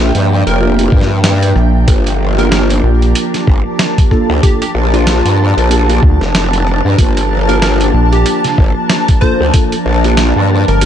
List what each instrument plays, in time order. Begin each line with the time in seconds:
Already playing: wobble bass A#1, ambient pad F3 A#3 D4 A#4 E5 G5, tine electric piano A#3 D4 F4 G4
0.15 wobble bass G2, closed hi-hat
0.47 wobble bass F1, digital synth lead A#4, closed hi-hat
0.60 tine electric piano A#3 D4 F4 G4
0.79 tine electric piano A#3 D4 F4 G4, closed hi-hat
0.92 wobble bass G2, kick
1.01 snare
1.24 snare, closed hi-hat
1.43 closed hi-hat
1.56 analog synth bass A#1, cross-stick
1.87 wobble bass G1, tine electric piano A#3 D4 F4 G4, ambient pad G4, kick, closed hi-hat
2.07 closed hi-hat
2.28 ambient pad A5
2.38 tine electric piano A#3 D4 F4 G4, digital synth lead A#4, closed hi-hat
2.52 digital synth lead A#4, snare, closed hi-hat
2.70 closed hi-hat
2.83 analog synth bass A#1
3.02 closed hi-hat
3.15 cross-stick, closed hi-hat
3.34 snare, closed hi-hat
3.47 wobble bass G1, kick
3.79 snare, closed hi-hat
3.98 kick, closed hi-hat
4.11 tine electric piano A#3 D4 F4 A4, kick, cross-stick
4.30 wobble bass D2
4.43 tine electric piano A#3 D4 F4 A4, digital synth lead G4, kick, closed hi-hat
4.62 digital synth lead G4, closed hi-hat
4.75 wobble bass A#1
4.93 tine electric piano A#3 D4 F4 G4, digital synth lead F4, closed hi-hat
5.07 snare, closed hi-hat
5.25 wobble bass G2, closed hi-hat
5.57 wobble bass A#1, closed hi-hat
5.70 tine electric piano A#3 D4 F4 G4, closed hi-hat
5.89 tine electric piano A#3 D4 F4 G4, closed hi-hat
6.03 analog synth bass D2, kick
6.21 wobble bass F1, snare
6.35 snare, closed hi-hat
6.53 closed hi-hat
6.67 cross-stick
6.85 wobble bass G2
6.98 wobble bass G1, tine electric piano A#3 D4 F4 G4, ambient pad A5, kick, closed hi-hat
7.17 closed hi-hat
7.49 tine electric piano A#3 D4 F4 G4, digital synth lead A#4, closed hi-hat
7.62 digital synth lead A#4, snare, closed hi-hat
7.81 closed hi-hat
7.94 analog synth bass A#1
8.13 digital synth lead G4, closed hi-hat
8.26 cross-stick, closed hi-hat
8.44 snare, closed hi-hat
8.58 wobble bass G1, kick
8.90 snare, closed hi-hat
9.08 kick, closed hi-hat
9.21 tine electric piano A#3 D4 F4 A4, digital synth lead C5, kick, cross-stick
9.41 wobble bass D2
9.54 tine electric piano A#3 D4 F4 A4, kick, closed hi-hat
9.72 closed hi-hat
9.86 wobble bass A#1
10.04 tine electric piano A#3 D4 F4 G4, closed hi-hat
10.17 snare, closed hi-hat
10.36 wobble bass G2
10.68 analog synth bass G1, digital synth lead A#4, closed hi-hat
10.81 tine electric piano A#3 D4 F4 G4, closed hi-hat